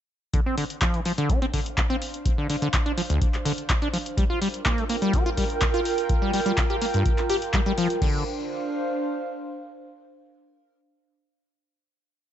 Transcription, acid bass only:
0, 0, Header, 1, 2, 480
1, 0, Start_track
1, 0, Key_signature, -1, "minor"
1, 0, Tempo, 480000
1, 337, Time_signature, 4, 2, 24, 8
1, 12323, End_track
2, 0, Start_track
2, 0, Title_t, "Acid bass"
2, 0, Program_c, 0, 38
2, 335, Note_on_c, 0, 50, 75
2, 404, Note_off_c, 0, 50, 0
2, 462, Note_on_c, 0, 60, 70
2, 557, Note_off_c, 0, 60, 0
2, 576, Note_on_c, 0, 50, 76
2, 645, Note_off_c, 0, 50, 0
2, 816, Note_on_c, 0, 53, 75
2, 941, Note_on_c, 0, 52, 73
2, 956, Note_off_c, 0, 53, 0
2, 1005, Note_off_c, 0, 52, 0
2, 1056, Note_on_c, 0, 53, 77
2, 1125, Note_off_c, 0, 53, 0
2, 1181, Note_on_c, 0, 50, 106
2, 1295, Note_on_c, 0, 62, 80
2, 1310, Note_off_c, 0, 50, 0
2, 1399, Note_off_c, 0, 62, 0
2, 1420, Note_on_c, 0, 60, 102
2, 1459, Note_off_c, 0, 60, 0
2, 1536, Note_on_c, 0, 50, 75
2, 1605, Note_off_c, 0, 50, 0
2, 1899, Note_on_c, 0, 60, 100
2, 1964, Note_off_c, 0, 60, 0
2, 2379, Note_on_c, 0, 50, 73
2, 2476, Note_off_c, 0, 50, 0
2, 2495, Note_on_c, 0, 50, 80
2, 2564, Note_off_c, 0, 50, 0
2, 2619, Note_on_c, 0, 50, 100
2, 2684, Note_off_c, 0, 50, 0
2, 2859, Note_on_c, 0, 62, 78
2, 2924, Note_off_c, 0, 62, 0
2, 2975, Note_on_c, 0, 53, 77
2, 3017, Note_off_c, 0, 53, 0
2, 3099, Note_on_c, 0, 38, 103
2, 3195, Note_off_c, 0, 38, 0
2, 3454, Note_on_c, 0, 50, 99
2, 3524, Note_off_c, 0, 50, 0
2, 3820, Note_on_c, 0, 62, 79
2, 3884, Note_off_c, 0, 62, 0
2, 3934, Note_on_c, 0, 53, 73
2, 3977, Note_off_c, 0, 53, 0
2, 4174, Note_on_c, 0, 55, 84
2, 4244, Note_off_c, 0, 55, 0
2, 4299, Note_on_c, 0, 65, 74
2, 4396, Note_off_c, 0, 65, 0
2, 4415, Note_on_c, 0, 55, 77
2, 4484, Note_off_c, 0, 55, 0
2, 4652, Note_on_c, 0, 58, 79
2, 4778, Note_on_c, 0, 57, 76
2, 4793, Note_off_c, 0, 58, 0
2, 4843, Note_off_c, 0, 57, 0
2, 4894, Note_on_c, 0, 58, 77
2, 4964, Note_off_c, 0, 58, 0
2, 5020, Note_on_c, 0, 55, 106
2, 5136, Note_on_c, 0, 67, 81
2, 5151, Note_off_c, 0, 55, 0
2, 5239, Note_off_c, 0, 67, 0
2, 5259, Note_on_c, 0, 65, 101
2, 5299, Note_off_c, 0, 65, 0
2, 5376, Note_on_c, 0, 55, 77
2, 5445, Note_off_c, 0, 55, 0
2, 5741, Note_on_c, 0, 65, 102
2, 5805, Note_off_c, 0, 65, 0
2, 6220, Note_on_c, 0, 55, 74
2, 6316, Note_off_c, 0, 55, 0
2, 6336, Note_on_c, 0, 55, 81
2, 6405, Note_off_c, 0, 55, 0
2, 6458, Note_on_c, 0, 55, 106
2, 6523, Note_off_c, 0, 55, 0
2, 6701, Note_on_c, 0, 67, 78
2, 6764, Note_off_c, 0, 67, 0
2, 6816, Note_on_c, 0, 58, 79
2, 6858, Note_off_c, 0, 58, 0
2, 6942, Note_on_c, 0, 43, 107
2, 7037, Note_off_c, 0, 43, 0
2, 7297, Note_on_c, 0, 67, 101
2, 7365, Note_off_c, 0, 67, 0
2, 7537, Note_on_c, 0, 55, 94
2, 7605, Note_off_c, 0, 55, 0
2, 7662, Note_on_c, 0, 55, 107
2, 7725, Note_off_c, 0, 55, 0
2, 7778, Note_on_c, 0, 53, 102
2, 7880, Note_off_c, 0, 53, 0
2, 8018, Note_on_c, 0, 50, 88
2, 8240, Note_off_c, 0, 50, 0
2, 12323, End_track
0, 0, End_of_file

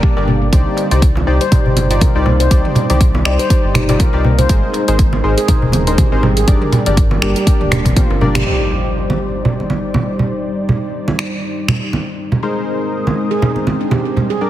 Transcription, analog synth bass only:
0, 0, Header, 1, 2, 480
1, 0, Start_track
1, 0, Key_signature, -3, "minor"
1, 0, Tempo, 495868
1, 510, Time_signature, 4, 2, 24, 8
1, 14034, End_track
2, 0, Start_track
2, 0, Title_t, "Analog synth bass"
2, 0, Program_c, 0, 38
2, 164, Note_on_c, 0, 31, 84
2, 482, Note_off_c, 0, 31, 0
2, 509, Note_on_c, 0, 36, 98
2, 622, Note_off_c, 0, 36, 0
2, 884, Note_on_c, 0, 36, 100
2, 1202, Note_off_c, 0, 36, 0
2, 1228, Note_on_c, 0, 36, 104
2, 1341, Note_off_c, 0, 36, 0
2, 1604, Note_on_c, 0, 31, 83
2, 1922, Note_off_c, 0, 31, 0
2, 2084, Note_on_c, 0, 36, 87
2, 2402, Note_off_c, 0, 36, 0
2, 2429, Note_on_c, 0, 36, 98
2, 2542, Note_off_c, 0, 36, 0
2, 2807, Note_on_c, 0, 36, 100
2, 3123, Note_off_c, 0, 36, 0
2, 3150, Note_on_c, 0, 36, 105
2, 3262, Note_off_c, 0, 36, 0
2, 3524, Note_on_c, 0, 31, 86
2, 3842, Note_off_c, 0, 31, 0
2, 4004, Note_on_c, 0, 36, 88
2, 4322, Note_off_c, 0, 36, 0
2, 4350, Note_on_c, 0, 32, 97
2, 4462, Note_off_c, 0, 32, 0
2, 4725, Note_on_c, 0, 32, 100
2, 5042, Note_off_c, 0, 32, 0
2, 5069, Note_on_c, 0, 32, 108
2, 5182, Note_off_c, 0, 32, 0
2, 5444, Note_on_c, 0, 27, 83
2, 5762, Note_off_c, 0, 27, 0
2, 5923, Note_on_c, 0, 32, 86
2, 6241, Note_off_c, 0, 32, 0
2, 6270, Note_on_c, 0, 31, 95
2, 6383, Note_off_c, 0, 31, 0
2, 6644, Note_on_c, 0, 31, 98
2, 6962, Note_off_c, 0, 31, 0
2, 6989, Note_on_c, 0, 31, 105
2, 7102, Note_off_c, 0, 31, 0
2, 7364, Note_on_c, 0, 26, 84
2, 7682, Note_off_c, 0, 26, 0
2, 7842, Note_on_c, 0, 31, 100
2, 8161, Note_off_c, 0, 31, 0
2, 14034, End_track
0, 0, End_of_file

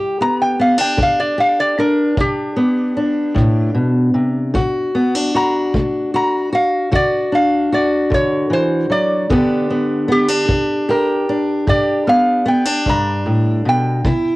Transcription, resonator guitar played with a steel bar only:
0, 0, Header, 1, 2, 480
1, 0, Start_track
1, 0, Tempo, 791557
1, 2759, Time_signature, 12, 3, 24, 8
1, 8707, End_track
2, 0, Start_track
2, 0, Title_t, "Resonator guitar played with a steel bar"
2, 0, Program_c, 0, 25
2, 134, Note_on_c, 0, 82, 90
2, 241, Note_off_c, 0, 82, 0
2, 253, Note_on_c, 0, 79, 78
2, 361, Note_off_c, 0, 79, 0
2, 372, Note_on_c, 0, 77, 73
2, 481, Note_off_c, 0, 77, 0
2, 489, Note_on_c, 0, 79, 70
2, 599, Note_off_c, 0, 79, 0
2, 622, Note_on_c, 0, 77, 78
2, 726, Note_off_c, 0, 77, 0
2, 726, Note_on_c, 0, 74, 77
2, 838, Note_off_c, 0, 74, 0
2, 850, Note_on_c, 0, 77, 83
2, 960, Note_off_c, 0, 77, 0
2, 969, Note_on_c, 0, 74, 81
2, 1080, Note_off_c, 0, 74, 0
2, 1088, Note_on_c, 0, 70, 70
2, 1316, Note_off_c, 0, 70, 0
2, 1335, Note_on_c, 0, 67, 84
2, 2263, Note_off_c, 0, 67, 0
2, 3253, Note_on_c, 0, 82, 87
2, 3479, Note_off_c, 0, 82, 0
2, 3733, Note_on_c, 0, 82, 84
2, 3959, Note_off_c, 0, 82, 0
2, 3971, Note_on_c, 0, 77, 67
2, 4198, Note_off_c, 0, 77, 0
2, 4216, Note_on_c, 0, 74, 85
2, 4441, Note_off_c, 0, 74, 0
2, 4456, Note_on_c, 0, 77, 74
2, 4681, Note_off_c, 0, 77, 0
2, 4694, Note_on_c, 0, 74, 68
2, 4920, Note_off_c, 0, 74, 0
2, 4936, Note_on_c, 0, 73, 82
2, 5160, Note_off_c, 0, 73, 0
2, 5173, Note_on_c, 0, 72, 75
2, 5399, Note_off_c, 0, 72, 0
2, 5406, Note_on_c, 0, 74, 82
2, 5635, Note_off_c, 0, 74, 0
2, 6135, Note_on_c, 0, 67, 86
2, 6592, Note_off_c, 0, 67, 0
2, 6613, Note_on_c, 0, 70, 71
2, 7070, Note_off_c, 0, 70, 0
2, 7091, Note_on_c, 0, 74, 78
2, 7316, Note_off_c, 0, 74, 0
2, 7332, Note_on_c, 0, 77, 84
2, 7557, Note_off_c, 0, 77, 0
2, 7569, Note_on_c, 0, 79, 76
2, 7795, Note_off_c, 0, 79, 0
2, 7819, Note_on_c, 0, 82, 80
2, 8272, Note_off_c, 0, 82, 0
2, 8301, Note_on_c, 0, 79, 86
2, 8707, Note_off_c, 0, 79, 0
2, 8707, End_track
0, 0, End_of_file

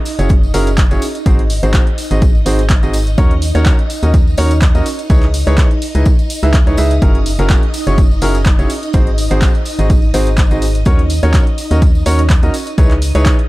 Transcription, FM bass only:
0, 0, Header, 1, 2, 480
1, 0, Start_track
1, 0, Tempo, 480000
1, 1259, Time_signature, 4, 2, 24, 8
1, 13485, End_track
2, 0, Start_track
2, 0, Title_t, "FM bass"
2, 0, Program_c, 0, 39
2, 189, Note_on_c, 0, 30, 96
2, 517, Note_off_c, 0, 30, 0
2, 540, Note_on_c, 0, 30, 97
2, 883, Note_off_c, 0, 30, 0
2, 910, Note_on_c, 0, 30, 91
2, 984, Note_off_c, 0, 30, 0
2, 1259, Note_on_c, 0, 32, 94
2, 1603, Note_off_c, 0, 32, 0
2, 1630, Note_on_c, 0, 32, 100
2, 1798, Note_off_c, 0, 32, 0
2, 2109, Note_on_c, 0, 32, 95
2, 2438, Note_off_c, 0, 32, 0
2, 2459, Note_on_c, 0, 32, 98
2, 2803, Note_off_c, 0, 32, 0
2, 2829, Note_on_c, 0, 32, 96
2, 3157, Note_off_c, 0, 32, 0
2, 3179, Note_on_c, 0, 39, 95
2, 3523, Note_off_c, 0, 39, 0
2, 3549, Note_on_c, 0, 39, 99
2, 3718, Note_off_c, 0, 39, 0
2, 4028, Note_on_c, 0, 39, 96
2, 4357, Note_off_c, 0, 39, 0
2, 4379, Note_on_c, 0, 39, 98
2, 4723, Note_off_c, 0, 39, 0
2, 4749, Note_on_c, 0, 39, 94
2, 4824, Note_off_c, 0, 39, 0
2, 5099, Note_on_c, 0, 37, 93
2, 5443, Note_off_c, 0, 37, 0
2, 5468, Note_on_c, 0, 37, 99
2, 5638, Note_off_c, 0, 37, 0
2, 5950, Note_on_c, 0, 37, 96
2, 6041, Note_off_c, 0, 37, 0
2, 6428, Note_on_c, 0, 37, 98
2, 6643, Note_off_c, 0, 37, 0
2, 6669, Note_on_c, 0, 37, 94
2, 6757, Note_off_c, 0, 37, 0
2, 6779, Note_on_c, 0, 37, 97
2, 6997, Note_off_c, 0, 37, 0
2, 7019, Note_on_c, 0, 30, 98
2, 7363, Note_off_c, 0, 30, 0
2, 7388, Note_on_c, 0, 30, 101
2, 7558, Note_off_c, 0, 30, 0
2, 7869, Note_on_c, 0, 30, 96
2, 8197, Note_off_c, 0, 30, 0
2, 8219, Note_on_c, 0, 30, 94
2, 8563, Note_off_c, 0, 30, 0
2, 8589, Note_on_c, 0, 30, 94
2, 8664, Note_off_c, 0, 30, 0
2, 8939, Note_on_c, 0, 32, 92
2, 9283, Note_off_c, 0, 32, 0
2, 9308, Note_on_c, 0, 32, 99
2, 9478, Note_off_c, 0, 32, 0
2, 9788, Note_on_c, 0, 32, 97
2, 10117, Note_off_c, 0, 32, 0
2, 10139, Note_on_c, 0, 32, 99
2, 10483, Note_off_c, 0, 32, 0
2, 10509, Note_on_c, 0, 32, 95
2, 10837, Note_off_c, 0, 32, 0
2, 10860, Note_on_c, 0, 39, 95
2, 11203, Note_off_c, 0, 39, 0
2, 11230, Note_on_c, 0, 39, 100
2, 11399, Note_off_c, 0, 39, 0
2, 11709, Note_on_c, 0, 39, 96
2, 12037, Note_off_c, 0, 39, 0
2, 12060, Note_on_c, 0, 39, 99
2, 12404, Note_off_c, 0, 39, 0
2, 12429, Note_on_c, 0, 39, 95
2, 12504, Note_off_c, 0, 39, 0
2, 12780, Note_on_c, 0, 37, 96
2, 13123, Note_off_c, 0, 37, 0
2, 13149, Note_on_c, 0, 37, 96
2, 13318, Note_off_c, 0, 37, 0
2, 13485, End_track
0, 0, End_of_file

